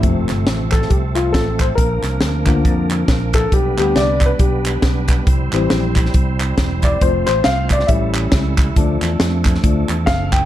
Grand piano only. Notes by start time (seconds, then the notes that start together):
0.02 C3 F3 A3
0.72 A4
0.90 G4
1.15 F4
1.32 A4
1.61 C5
1.75 A#4
2.45 D3 F3 A#3
3.35 A4
3.53 G4
3.78 D3 G3 B3 G4
3.97 D5
4.26 B4
4.40 G4
5.53 E3 G3 C4
6.84 D5
7.02 F3 A3 C4 C5
7.26 C5
7.44 F5
7.72 D5
7.87 E3 G3 C#4 E5
8.76 F3 A3 D4
9.63 F3 A3 D4
10.06 F5
10.32 G5